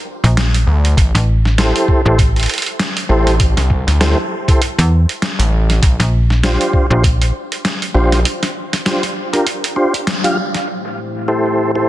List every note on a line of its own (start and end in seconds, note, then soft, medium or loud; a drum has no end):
0.24 0.65 A#1 loud
0.24 closed hi-hat soft
0.37 snare loud
0.37 closed hi-hat medium
0.54 closed hi-hat medium
0.67 0.95 D2 loud
0.85 closed hi-hat soft
0.97 1.12 A1 medium
0.97 kick loud
0.97 closed hi-hat medium
1.15 1.73 A1 loud
1.15 snare soft
1.15 closed hi-hat soft
1.45 snare soft
1.58 2.02 E4 medium
1.58 2.02 G4 medium
1.58 2.02 A4 medium
1.58 2.01 C5 medium
1.58 snare loud
1.58 closed hi-hat medium
1.76 closed hi-hat soft
1.88 kick medium
2.05 2.47 A1 medium
2.05 2.19 E4 medium
2.05 2.19 G4 medium
2.05 2.19 A4 medium
2.05 2.19 C5 loud
2.19 kick loud
2.19 closed hi-hat medium
2.36 closed hi-hat soft
2.40 closed hi-hat soft
2.43 closed hi-hat soft
2.46 closed hi-hat soft
2.49 closed hi-hat soft
2.54 closed hi-hat soft
2.58 closed hi-hat soft
2.62 closed hi-hat soft
2.66 closed hi-hat soft
2.79 snare loud
2.79 closed hi-hat medium
2.97 closed hi-hat soft
3.09 3.54 A1 medium
3.09 3.35 E4 medium
3.09 3.35 G4 medium
3.09 3.35 A4 medium
3.09 3.35 C5 loud
3.27 snare soft
3.27 closed hi-hat soft
3.40 kick loud
3.40 closed hi-hat medium
3.57 3.85 C2 loud
3.57 snare medium
3.57 closed hi-hat soft
3.70 kick medium
3.87 4.15 D2 loud
3.87 snare soft
3.87 closed hi-hat soft
4.01 4.18 E4 medium
4.01 4.18 G4 medium
4.01 4.18 A4 medium
4.01 4.18 C5 medium
4.01 snare loud
4.01 closed hi-hat medium
4.48 4.61 E4 medium
4.48 4.61 G4 medium
4.48 4.61 A4 medium
4.48 4.61 C5 medium
4.48 kick loud
4.48 closed hi-hat soft
4.62 closed hi-hat medium
4.79 5.06 E2 loud
4.79 closed hi-hat soft
5.09 closed hi-hat soft
5.22 snare loud
5.22 closed hi-hat medium
5.39 5.80 A1 medium
5.39 closed hi-hat soft
5.70 snare soft
5.70 closed hi-hat soft
5.82 5.97 A#1 loud
5.82 kick loud
5.82 closed hi-hat medium
6.00 6.57 A#1 loud
6.00 snare medium
6.00 closed hi-hat soft
6.30 snare soft
6.43 6.87 D4 medium
6.43 6.87 F4 medium
6.43 6.87 G4 medium
6.43 6.87 C5 medium
6.43 snare loud
6.43 closed hi-hat medium
6.61 closed hi-hat soft
6.73 kick medium
6.90 7.32 A#1 loud
6.90 7.04 D4 medium
6.90 7.04 F4 medium
6.90 7.04 G4 medium
6.90 7.04 C5 loud
7.04 kick loud
7.04 closed hi-hat medium
7.22 closed hi-hat medium
7.52 closed hi-hat soft
7.65 snare loud
7.65 closed hi-hat medium
7.82 closed hi-hat medium
7.94 8.25 A#1 loud
7.94 8.20 D4 medium
7.94 8.20 F4 medium
7.94 8.20 G4 medium
7.94 8.20 C5 medium
8.12 snare soft
8.12 closed hi-hat soft
8.25 closed hi-hat medium
8.43 snare medium
8.43 closed hi-hat medium
8.73 snare soft
8.73 closed hi-hat soft
8.86 9.03 D4 medium
8.86 9.03 F4 medium
8.86 9.03 G4 medium
8.86 9.03 C5 medium
8.86 snare loud
8.86 closed hi-hat medium
9.03 closed hi-hat medium
9.33 9.46 D4 medium
9.33 9.46 F4 medium
9.33 9.46 G4 medium
9.33 9.46 A#4 medium
9.33 closed hi-hat soft
9.47 closed hi-hat medium
9.64 closed hi-hat medium
9.76 9.94 D4 medium
9.76 9.94 F4 medium
9.76 9.94 G4 medium
9.76 9.94 C5 medium
9.94 closed hi-hat soft
10.07 snare loud
10.07 closed hi-hat medium
10.24 10.37 D4 loud
10.24 10.37 F4 medium
10.24 10.37 G4 medium
10.24 10.37 F5 loud
10.24 closed hi-hat medium
10.54 snare soft
10.54 closed hi-hat soft
10.67 11.89 A3 medium
10.67 11.89 E4 medium
10.67 11.89 G4 medium
10.67 11.89 C5 medium
10.67 closed hi-hat medium
10.85 closed hi-hat soft
11.28 11.71 E4 medium
11.28 11.71 G4 medium
11.28 11.71 A4 medium
11.28 11.71 C5 medium
11.28 closed hi-hat medium
11.45 closed hi-hat soft
11.75 11.89 E4 medium
11.75 11.89 G4 medium
11.75 11.89 A4 medium
11.75 11.89 C5 medium